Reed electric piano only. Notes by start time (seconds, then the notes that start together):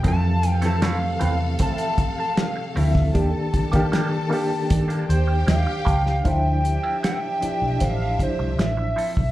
0.03 E3 F3 C4 A4
0.62 E3 F3 C4 A4
1.21 E3 C4 A4
2.75 F3 C4 E4 A4
3.14 D#3 A#3 D4 G4
3.71 D#3 A#3 D4
3.75 G4
4.29 D#3 A#3 D4
4.33 G4
6.24 F3 D4 E4 C5
7.40 F3 D4 E4 D5
8.18 F3 D4 E4 C5